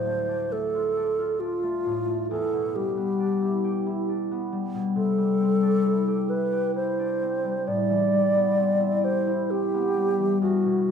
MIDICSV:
0, 0, Header, 1, 3, 480
1, 0, Start_track
1, 0, Key_signature, 0, "minor"
1, 0, Tempo, 888889
1, 1245, Time_signature, 3, 2, 24, 8
1, 3159, Tempo, 907716
1, 4599, Tempo, 928793
1, 5808, End_track
2, 0, Start_track
2, 0, Title_t, "Alto flute"
2, 0, Program_c, 0, 73
2, 0, Note_on_c, 0, 72, 50
2, 282, Note_on_c, 0, 69, 56
2, 290, Note_off_c, 0, 72, 0
2, 756, Note_on_c, 0, 65, 60
2, 764, Note_off_c, 0, 69, 0
2, 1243, Note_off_c, 0, 65, 0
2, 1247, Note_on_c, 0, 69, 53
2, 1489, Note_on_c, 0, 67, 45
2, 1497, Note_off_c, 0, 69, 0
2, 2207, Note_off_c, 0, 67, 0
2, 2681, Note_on_c, 0, 69, 63
2, 3396, Note_on_c, 0, 71, 49
2, 3404, Note_off_c, 0, 69, 0
2, 3635, Note_off_c, 0, 71, 0
2, 3638, Note_on_c, 0, 72, 64
2, 4126, Note_on_c, 0, 74, 69
2, 4134, Note_off_c, 0, 72, 0
2, 4843, Note_on_c, 0, 72, 54
2, 4850, Note_off_c, 0, 74, 0
2, 5081, Note_on_c, 0, 67, 61
2, 5089, Note_off_c, 0, 72, 0
2, 5550, Note_off_c, 0, 67, 0
2, 5553, Note_on_c, 0, 66, 53
2, 5808, Note_off_c, 0, 66, 0
2, 5808, End_track
3, 0, Start_track
3, 0, Title_t, "Harp"
3, 0, Program_c, 1, 46
3, 0, Note_on_c, 1, 38, 34
3, 0, Note_on_c, 1, 45, 31
3, 0, Note_on_c, 1, 62, 28
3, 34, Note_on_c, 1, 57, 30
3, 149, Note_off_c, 1, 62, 0
3, 155, Note_on_c, 1, 62, 32
3, 277, Note_off_c, 1, 57, 0
3, 283, Note_on_c, 1, 57, 31
3, 404, Note_on_c, 1, 65, 32
3, 516, Note_off_c, 1, 62, 0
3, 522, Note_on_c, 1, 62, 33
3, 635, Note_off_c, 1, 65, 0
3, 641, Note_on_c, 1, 65, 36
3, 751, Note_off_c, 1, 62, 0
3, 757, Note_on_c, 1, 62, 30
3, 876, Note_off_c, 1, 57, 0
3, 882, Note_on_c, 1, 57, 31
3, 996, Note_off_c, 1, 45, 0
3, 1003, Note_on_c, 1, 45, 33
3, 1116, Note_off_c, 1, 57, 0
3, 1122, Note_on_c, 1, 57, 26
3, 1247, Note_on_c, 1, 40, 42
3, 1257, Note_off_c, 1, 38, 0
3, 1264, Note_off_c, 1, 57, 0
3, 1264, Note_off_c, 1, 65, 0
3, 1265, Note_off_c, 1, 45, 0
3, 1368, Note_on_c, 1, 47, 35
3, 1486, Note_on_c, 1, 55, 30
3, 1605, Note_on_c, 1, 59, 37
3, 1721, Note_off_c, 1, 62, 0
3, 1727, Note_on_c, 1, 62, 35
3, 1846, Note_on_c, 1, 64, 35
3, 1967, Note_on_c, 1, 67, 36
3, 2080, Note_off_c, 1, 64, 0
3, 2087, Note_on_c, 1, 64, 36
3, 2200, Note_off_c, 1, 62, 0
3, 2207, Note_on_c, 1, 62, 32
3, 2322, Note_off_c, 1, 59, 0
3, 2329, Note_on_c, 1, 59, 30
3, 2437, Note_off_c, 1, 55, 0
3, 2443, Note_on_c, 1, 55, 33
3, 2556, Note_off_c, 1, 47, 0
3, 2563, Note_on_c, 1, 47, 32
3, 2677, Note_on_c, 1, 48, 40
3, 2697, Note_off_c, 1, 40, 0
3, 2698, Note_off_c, 1, 47, 0
3, 2699, Note_off_c, 1, 59, 0
3, 2790, Note_off_c, 1, 55, 0
3, 2797, Note_on_c, 1, 55, 34
3, 2919, Note_on_c, 1, 60, 37
3, 3030, Note_off_c, 1, 62, 0
3, 3036, Note_on_c, 1, 62, 38
3, 3155, Note_off_c, 1, 64, 0
3, 3161, Note_on_c, 1, 64, 33
3, 3274, Note_off_c, 1, 67, 0
3, 3280, Note_on_c, 1, 67, 35
3, 3395, Note_off_c, 1, 64, 0
3, 3401, Note_on_c, 1, 64, 35
3, 3511, Note_off_c, 1, 67, 0
3, 3517, Note_on_c, 1, 67, 38
3, 3633, Note_off_c, 1, 64, 0
3, 3639, Note_on_c, 1, 64, 37
3, 3756, Note_off_c, 1, 62, 0
3, 3762, Note_on_c, 1, 62, 37
3, 3876, Note_off_c, 1, 60, 0
3, 3883, Note_on_c, 1, 60, 36
3, 3996, Note_off_c, 1, 55, 0
3, 4002, Note_on_c, 1, 55, 30
3, 4122, Note_on_c, 1, 45, 38
3, 4139, Note_off_c, 1, 48, 0
3, 4141, Note_off_c, 1, 62, 0
3, 4242, Note_on_c, 1, 52, 36
3, 4353, Note_off_c, 1, 55, 0
3, 4360, Note_on_c, 1, 55, 30
3, 4480, Note_on_c, 1, 59, 38
3, 4591, Note_off_c, 1, 60, 0
3, 4598, Note_on_c, 1, 60, 36
3, 4713, Note_off_c, 1, 64, 0
3, 4719, Note_on_c, 1, 64, 38
3, 4833, Note_off_c, 1, 67, 0
3, 4839, Note_on_c, 1, 67, 37
3, 4952, Note_off_c, 1, 64, 0
3, 4958, Note_on_c, 1, 64, 39
3, 5077, Note_off_c, 1, 60, 0
3, 5083, Note_on_c, 1, 60, 34
3, 5195, Note_off_c, 1, 59, 0
3, 5201, Note_on_c, 1, 59, 36
3, 5313, Note_off_c, 1, 55, 0
3, 5320, Note_on_c, 1, 55, 33
3, 5426, Note_off_c, 1, 52, 0
3, 5432, Note_on_c, 1, 52, 29
3, 5552, Note_on_c, 1, 40, 41
3, 5572, Note_off_c, 1, 52, 0
3, 5575, Note_off_c, 1, 45, 0
3, 5575, Note_off_c, 1, 60, 0
3, 5673, Note_on_c, 1, 47, 34
3, 5791, Note_off_c, 1, 55, 0
3, 5808, Note_off_c, 1, 40, 0
3, 5808, Note_off_c, 1, 47, 0
3, 5808, Note_off_c, 1, 59, 0
3, 5808, Note_off_c, 1, 64, 0
3, 5808, Note_off_c, 1, 67, 0
3, 5808, End_track
0, 0, End_of_file